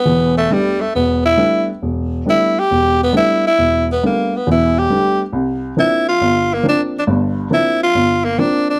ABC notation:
X:1
M:4/4
L:1/8
Q:"Swing" 1/4=136
K:Am
V:1 name="Tenor saxophone"
B, A, G, A, B, E2 z | z2 E G2 B, E E- | E B, _B, =B, E G2 z | z2 E F2 _B, D D |
z2 E F2 _B, D D |]
V:2 name="Grand piano"
[E,,,E,,]2 [G,A,B,D] z E,,,2 [G,A,B,D] z | E,,,2 [G,A,B,D] z E,,,2 [G,A,B,D] z | E,,,2 [G,A,B,D] z [E,,,E,,]2 [G,A,B,D] z | C,,2 [F,_B,CD] z G,,,2 [F,B,CD] z |
[G,,,G,,]2 [F,_B,CD] z G,,,2 [F,B,CD] z |]